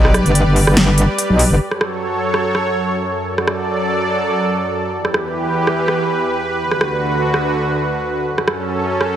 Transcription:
0.00 0.24 B1 loud
0.00 1.56 G3 medium
0.00 1.56 G4 medium
0.00 1.56 B4 medium
0.00 1.56 D5 medium
0.05 cross-stick medium
0.14 cross-stick medium
0.14 closed hi-hat medium
0.26 0.45 G1 loud
0.26 closed hi-hat soft
0.35 closed hi-hat medium
0.46 0.65 G1 medium
0.56 open hi-hat medium
0.67 1.07 G1 loud
0.67 cross-stick medium
0.77 snare loud
0.77 closed hi-hat medium
0.98 closed hi-hat medium
1.18 closed hi-hat medium
1.30 1.49 B1 loud
1.39 open hi-hat loud
1.51 1.59 G1 loud
1.60 4.90 F#2 medium
1.60 3.25 F#3 medium
1.60 3.25 A4 medium
1.60 3.25 C#5 medium
1.71 cross-stick soft
1.81 cross-stick medium
2.34 cross-stick medium
2.55 cross-stick soft
3.27 4.92 F#3 medium
3.27 4.92 A4 medium
3.27 4.92 D5 medium
3.38 cross-stick soft
3.48 cross-stick medium
4.93 6.58 E2 medium
4.93 6.58 E3 medium
4.93 6.58 G4 medium
4.93 8.23 B4 medium
5.05 cross-stick soft
5.14 cross-stick medium
5.67 cross-stick soft
5.88 cross-stick soft
6.60 8.25 D2 medium
6.60 8.25 D3 medium
6.60 8.25 F#4 medium
6.71 cross-stick soft
6.81 cross-stick medium
7.34 cross-stick soft
8.27 9.16 F#2 medium
8.27 9.16 F#3 medium
8.27 9.16 C#4 medium
8.27 9.16 A4 medium
8.38 cross-stick soft
8.48 cross-stick medium
9.01 cross-stick soft

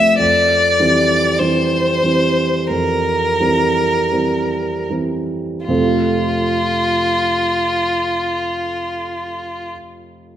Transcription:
0.00 0.23 F3 soft
0.00 0.23 A3 soft
0.00 0.23 C4 soft
0.00 0.18 E5 medium
0.19 0.77 F2 soft
0.19 1.40 D5 medium
0.80 1.36 E3 soft
0.80 1.36 G3 soft
0.80 1.36 C4 soft
1.39 1.99 E3 soft
1.39 1.99 G3 soft
1.39 1.99 C4 soft
1.39 2.68 C5 medium
2.03 2.65 E3 soft
2.03 2.65 G3 soft
2.03 2.65 C4 soft
2.67 3.37 F2 soft
2.67 4.89 A#4 medium
3.40 4.08 E3 soft
3.40 4.08 G3 soft
3.40 4.08 C4 soft
4.12 4.86 E3 soft
4.12 4.86 G3 soft
4.12 4.87 C4 soft
4.90 5.64 E3 soft
4.90 5.65 G3 soft
4.90 5.65 C4 soft
5.66 9.71 F2 soft
5.66 9.71 C3 soft
5.66 9.71 A3 soft
5.66 9.72 C4 soft
5.66 9.69 F4 soft
5.66 9.72 F4 soft
5.66 9.72 A4 soft

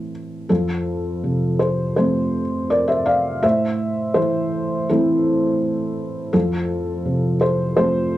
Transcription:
0.00 0.46 A2 soft
0.00 0.52 E3 soft
0.00 0.46 A3 soft
0.00 0.46 C4 soft
0.00 0.11 A4 medium
0.49 3.40 F2 soft
0.49 1.57 F4 medium
0.49 1.59 A4 medium
1.24 2.41 C3 soft
1.59 1.94 A4 medium
1.59 1.95 C5 medium
1.96 3.40 F3 soft
1.96 3.40 A3 soft
1.96 3.40 C4 soft
1.96 2.67 A4 soft
1.96 2.70 C5 medium
2.70 2.88 A#4 medium
2.70 2.88 D5 medium
2.88 3.06 C5 medium
2.88 3.06 E5 medium
3.06 3.41 D5 medium
3.06 3.43 F5 medium
3.43 6.30 A2 medium
3.43 4.12 C5 medium
3.43 4.16 E5 medium
4.14 4.89 E3 soft
4.14 4.85 A4 medium
4.14 4.88 C5 medium
4.89 6.31 E3 soft
4.89 6.31 A3 soft
4.89 6.31 C4 soft
4.89 6.31 E4 medium
4.89 6.31 A4 medium
6.33 8.18 F2 medium
6.33 7.36 F4 medium
6.33 7.40 A4 medium
7.05 8.18 C3 soft
7.41 7.74 A4 medium
7.41 7.75 C5 medium
7.77 8.18 F3 soft
7.77 8.18 A3 soft
7.77 8.18 C4 soft
7.77 8.18 A4 medium
7.77 8.18 C5 medium

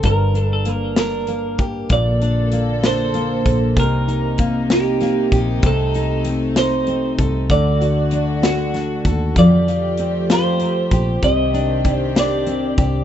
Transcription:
0.00 1.59 G1 loud
0.00 1.90 G2 medium
0.00 1.68 D3 medium
0.00 0.10 C4 medium
0.00 0.34 D4 medium
0.00 0.10 A4 medium
0.00 kick medium
0.00 closed hi-hat medium
0.06 0.41 A#4 loud
0.35 0.96 D4 medium
0.35 closed hi-hat medium
0.41 0.53 A4 loud
0.53 0.69 A4 medium
0.65 1.28 A#3 medium
0.65 0.98 A#4 medium
0.65 closed hi-hat medium
0.96 1.96 D4 medium
0.96 1.64 A#4 medium
0.96 snare loud
0.96 closed hi-hat medium
1.27 2.52 A#3 medium
1.27 closed hi-hat soft
1.58 1.88 A1 medium
1.58 1.97 G4 medium
1.58 kick medium
1.58 closed hi-hat medium
1.89 3.42 A#1 loud
1.89 3.77 A#2 medium
1.89 3.75 D3 medium
1.89 5.60 A#3 medium
1.89 3.75 A4 medium
1.89 2.86 D5 loud
1.89 kick medium
1.89 closed hi-hat medium
2.22 2.82 D4 medium
2.22 closed hi-hat medium
2.52 3.14 A#3 medium
2.52 closed hi-hat medium
2.84 3.83 D4 medium
2.84 3.79 C5 medium
2.84 snare loud
2.84 closed hi-hat medium
3.14 3.83 A#3 medium
3.14 closed hi-hat medium
3.46 3.77 A#1 medium
3.46 3.83 A4 medium
3.46 kick medium
3.46 closed hi-hat medium
3.77 5.28 C2 loud
3.77 5.62 C3 medium
3.77 7.47 C3 medium
3.77 7.47 D#4 medium
3.77 4.74 A#4 medium
3.77 kick loud
3.77 closed hi-hat medium
4.08 4.70 D#4 medium
4.08 closed hi-hat medium
4.38 5.00 A#3 medium
4.38 kick medium
4.38 closed hi-hat medium
4.70 5.70 D#4 medium
4.70 5.37 G4 medium
4.70 snare loud
4.70 closed hi-hat medium
5.01 5.70 A#3 medium
5.01 snare soft
5.01 closed hi-hat soft
5.32 5.61 A#1 medium
5.32 5.70 G4 medium
5.32 kick medium
5.32 closed hi-hat medium
5.63 7.15 C2 loud
5.63 7.49 C3 medium
5.63 7.48 A3 medium
5.63 6.23 A4 medium
5.63 kick loud
5.63 closed hi-hat medium
5.94 6.56 D#4 medium
5.94 closed hi-hat soft
6.25 6.87 C4 medium
6.25 closed hi-hat medium
6.56 7.56 D#4 medium
6.56 7.15 C5 loud
6.56 snare loud
6.56 closed hi-hat medium
6.87 7.56 C4 medium
6.87 closed hi-hat soft
7.18 7.48 C2 medium
7.18 9.06 A4 medium
7.18 kick medium
7.18 closed hi-hat medium
7.50 9.01 D2 loud
7.50 9.34 D3 medium
7.50 9.36 D3 medium
7.50 9.34 A3 medium
7.50 9.34 F#4 medium
7.50 8.47 D5 loud
7.50 kick medium
7.50 closed hi-hat medium
7.81 8.41 F#4 medium
7.81 closed hi-hat medium
8.11 8.73 D4 medium
8.11 closed hi-hat medium
8.42 9.42 F#4 medium
8.42 9.10 F#4 medium
8.42 snare loud
8.42 closed hi-hat medium
8.74 9.42 D4 medium
8.74 snare soft
8.74 closed hi-hat medium
9.05 9.36 D#2 medium
9.05 9.43 A4 medium
9.05 kick medium
9.05 closed hi-hat medium
9.36 10.87 F2 medium
9.36 11.23 F3 medium
9.36 11.21 F3 medium
9.36 11.21 A3 medium
9.36 11.21 G4 medium
9.36 10.27 D5 loud
9.36 kick medium
9.36 closed hi-hat medium
9.68 10.29 F4 medium
9.68 closed hi-hat soft
9.98 10.61 C4 medium
9.98 closed hi-hat medium
10.30 11.29 F4 medium
10.30 11.24 C5 medium
10.30 snare loud
10.30 closed hi-hat medium
10.60 11.29 C4 medium
10.60 closed hi-hat medium
10.91 11.21 A#1 medium
10.91 12.78 G4 medium
10.91 kick medium
10.91 closed hi-hat medium
11.22 12.74 C2 loud
11.22 13.04 C3 medium
11.22 13.04 D#3 medium
11.22 13.04 C4 medium
11.22 13.04 G4 medium
11.22 11.88 D#5 loud
11.22 kick medium
11.22 closed hi-hat medium
11.54 12.15 D4 medium
11.54 closed hi-hat medium
11.85 12.45 C4 medium
11.85 12.19 D5 loud
11.85 kick medium
11.85 closed hi-hat medium
12.15 13.04 D4 medium
12.15 13.04 D5 medium
12.15 snare loud
12.15 closed hi-hat medium
12.47 13.04 C4 medium
12.47 closed hi-hat soft
12.78 13.04 C2 medium
12.78 13.04 G4 medium
12.78 kick medium
12.78 closed hi-hat medium

